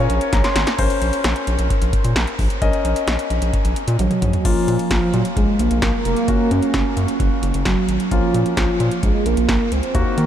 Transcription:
0.00 0.77 C#4 medium
0.00 0.77 A#4 medium
0.00 0.56 C#5 loud
0.00 0.77 C#5 medium
0.00 0.31 G#5 medium
0.10 0.19 A#1 loud
0.10 closed hi-hat medium
0.21 closed hi-hat medium
0.33 0.42 A#1 loud
0.33 0.43 A#5 medium
0.33 kick loud
0.33 snare medium
0.33 closed hi-hat medium
0.44 0.76 C6 medium
0.44 snare medium
0.44 closed hi-hat soft
0.56 0.65 G#1 medium
0.56 snare loud
0.56 closed hi-hat medium
0.67 snare medium
0.67 closed hi-hat soft
0.79 0.88 A#1 loud
0.79 2.58 C#4 medium
0.79 2.58 A#4 medium
0.79 2.58 C5 medium
0.79 kick loud
0.79 closed hi-hat medium
0.79 crash medium
0.90 closed hi-hat medium
1.02 1.11 A#1 loud
1.02 closed hi-hat medium
1.13 closed hi-hat medium
1.24 1.34 A#1 loud
1.24 snare loud
1.24 closed hi-hat medium
1.36 closed hi-hat soft
1.47 1.57 A#1 loud
1.47 closed hi-hat medium
1.59 1.68 A#1 loud
1.59 closed hi-hat medium
1.70 kick medium
1.70 closed hi-hat medium
1.82 1.91 A#1 loud
1.82 closed hi-hat medium
1.93 kick loud
1.93 closed hi-hat medium
2.04 2.14 A#2 medium
2.04 closed hi-hat medium
2.16 2.25 A#1 loud
2.16 snare loud
2.16 closed hi-hat medium
2.27 closed hi-hat soft
2.39 2.48 A#1 loud
2.39 kick medium
2.39 open hi-hat medium
2.50 closed hi-hat soft
2.62 2.71 A#1 loud
2.62 4.41 C#4 medium
2.62 4.41 A#4 medium
2.62 4.41 D#5 medium
2.62 kick loud
2.62 closed hi-hat medium
2.73 closed hi-hat medium
2.85 2.94 A#1 loud
2.85 closed hi-hat medium
2.96 closed hi-hat medium
3.07 3.17 A#1 loud
3.07 snare loud
3.07 closed hi-hat medium
3.19 closed hi-hat medium
3.30 3.40 A#1 medium
3.30 closed hi-hat medium
3.42 3.51 A#1 loud
3.42 closed hi-hat medium
3.53 kick medium
3.53 closed hi-hat medium
3.65 3.74 A#1 medium
3.65 closed hi-hat soft
3.76 closed hi-hat medium
3.88 3.97 A#2 loud
3.88 closed hi-hat medium
3.99 4.08 A#1 loud
3.99 4.46 F#3 medium
3.99 closed hi-hat medium
3.99 high tom medium
4.11 closed hi-hat soft
4.11 mid tom medium
4.22 4.31 A#1 loud
4.22 closed hi-hat medium
4.22 mid tom medium
4.33 closed hi-hat soft
4.33 floor tom medium
4.45 4.54 A#1 loud
4.45 4.90 F3 loud
4.45 6.24 A#3 medium
4.45 6.24 C#4 medium
4.45 6.24 F4 medium
4.45 kick loud
4.45 closed hi-hat medium
4.45 crash medium
4.68 4.77 A#2 loud
4.68 closed hi-hat medium
4.79 closed hi-hat medium
4.91 5.00 A#1 loud
4.91 5.12 F3 medium
4.91 kick loud
4.91 snare loud
4.91 closed hi-hat medium
5.14 5.23 A#2 loud
5.14 5.24 F#3 medium
5.14 closed hi-hat medium
5.25 closed hi-hat medium
5.37 5.46 A#1 loud
5.37 5.61 G#3 loud
5.37 kick loud
5.37 closed hi-hat medium
5.59 5.69 A#1 loud
5.59 5.82 A#3 loud
5.59 closed hi-hat medium
5.71 5.80 A#1 medium
5.71 closed hi-hat medium
5.82 5.92 A#1 loud
5.82 6.04 A#3 loud
5.82 kick loud
5.82 snare loud
5.82 closed hi-hat medium
6.05 6.14 F1 medium
6.05 6.53 A#3 loud
6.05 closed hi-hat medium
6.16 closed hi-hat soft
6.28 6.38 F#1 loud
6.28 8.08 A#3 medium
6.28 8.08 C#4 medium
6.28 8.08 F#4 medium
6.28 kick loud
6.28 closed hi-hat medium
6.51 6.60 F#2 loud
6.51 6.73 C#4 loud
6.51 closed hi-hat medium
6.62 closed hi-hat medium
6.74 6.83 F#1 medium
6.74 7.16 C#4 loud
6.74 kick loud
6.74 snare loud
6.74 closed hi-hat medium
6.97 7.06 F#2 loud
6.97 closed hi-hat medium
7.08 closed hi-hat medium
7.20 7.29 F#1 loud
7.20 kick loud
7.20 closed hi-hat medium
7.43 7.52 F#1 loud
7.43 closed hi-hat medium
7.54 7.63 F#1 medium
7.54 closed hi-hat medium
7.65 7.75 F#1 loud
7.65 8.08 F#3 medium
7.65 kick loud
7.65 snare loud
7.65 closed hi-hat medium
7.88 7.98 G#1 medium
7.88 closed hi-hat medium
8.00 closed hi-hat soft
8.11 8.21 A#1 loud
8.11 8.54 F3 medium
8.11 9.91 A#3 medium
8.11 9.91 C#4 medium
8.11 9.91 F4 medium
8.11 kick loud
8.11 closed hi-hat medium
8.34 8.44 A#2 loud
8.34 closed hi-hat medium
8.46 closed hi-hat soft
8.57 8.67 A#1 loud
8.57 9.00 F3 medium
8.57 kick loud
8.57 snare loud
8.57 closed hi-hat medium
8.80 8.89 A#2 loud
8.80 closed hi-hat medium
8.91 closed hi-hat medium
9.03 9.12 A#1 loud
9.03 9.27 G#3 loud
9.03 kick loud
9.03 closed hi-hat medium
9.26 9.35 A#1 loud
9.26 9.73 A#3 loud
9.26 closed hi-hat medium
9.37 9.47 A#1 medium
9.37 closed hi-hat medium
9.49 9.58 A#1 loud
9.49 kick loud
9.49 snare loud
9.49 closed hi-hat medium
9.72 9.81 C#2 medium
9.72 10.19 C4 loud
9.72 closed hi-hat medium
9.83 closed hi-hat soft
9.95 10.04 D#2 loud
9.95 10.26 A#3 medium
9.95 10.26 D#4 medium
9.95 10.26 F#4 medium
9.95 kick loud
9.95 closed hi-hat medium
10.17 10.26 D#3 loud
10.17 10.26 A#3 loud
10.17 closed hi-hat medium

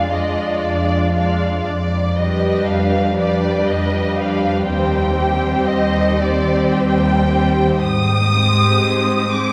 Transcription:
0.00 0.53 F2 soft
0.00 0.12 G#3 soft
0.00 0.12 D4 soft
0.00 0.12 F4 soft
0.00 0.12 D5 soft
0.00 0.15 F5 soft
0.13 1.13 G#3 soft
0.13 1.13 D4 soft
0.13 1.14 F4 soft
0.13 1.13 D5 soft
0.13 0.64 D#5 soft
0.64 1.54 F2 soft
0.64 1.15 D5 soft
1.14 1.65 G#3 soft
1.14 1.65 D4 soft
1.14 1.65 F4 soft
1.14 1.66 D5 soft
1.14 1.65 F5 soft
1.66 2.56 F2 soft
1.66 2.17 D5 soft
2.17 3.16 G3 soft
2.17 3.16 D4 soft
2.17 3.17 G4 soft
2.17 3.17 B4 soft
2.17 2.68 D#5 soft
2.68 3.56 F2 soft
2.68 3.18 F5 soft
3.18 4.16 G3 soft
3.18 4.16 D4 soft
3.18 4.16 G4 soft
3.18 4.16 B4 soft
3.18 3.67 D5 medium
3.68 4.56 F2 soft
3.68 4.18 D#5 medium
4.17 4.65 G3 soft
4.17 4.66 D4 soft
4.17 4.67 G4 soft
4.17 4.67 B4 soft
4.17 4.68 F5 medium
4.66 5.56 D#2 medium
4.66 5.15 G3 soft
4.66 5.15 C4 soft
4.66 5.66 G5 medium
4.70 5.18 G4 soft
4.70 5.18 C5 soft
5.16 6.18 G3 soft
5.16 6.18 C4 soft
5.16 6.18 G4 soft
5.16 6.18 C5 soft
5.67 6.62 D#2 soft
5.67 6.20 D#5 medium
6.20 7.26 G3 soft
6.20 7.26 C4 soft
6.20 7.26 G4 soft
6.20 7.26 C5 soft
6.20 6.74 D5 medium
6.73 7.70 D#2 medium
6.73 7.81 G5 medium
7.28 7.81 G3 soft
7.28 7.81 C4 soft
7.28 7.81 G4 soft
7.28 7.82 C5 soft
7.81 8.71 G#2 medium
7.81 9.31 D#6 medium
8.33 9.30 G#3 soft
8.33 9.30 C4 soft
8.33 9.30 G4 soft
8.33 9.30 C5 soft
8.83 9.53 G#2 soft
9.31 9.53 G#3 soft
9.31 9.53 C4 soft
9.31 9.53 G4 soft
9.31 9.53 C5 soft
9.31 9.53 D6 medium

